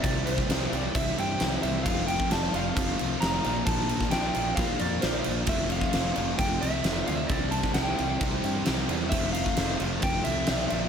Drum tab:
CC |x-x-x-x-x-x-x-x-|x-x-x-x-x-x-x-x-|x-x-x-x-x-x-x-x-|x-x-x-x-x-x-x-x-|
SD |---oo-------o---|----o-------o---|---oo-------o---|---oo-------o---|
BD |o--o----o-------|o--o----o-------|o--o----o-------|o--o----o-------|

CC |x-x-x-x-x-x-x-x-|x-x-x-x-x-x-x-x-|
SD |---oo-------o---|---oo-------o---|
BD |o--o----o-------|o--o----o-------|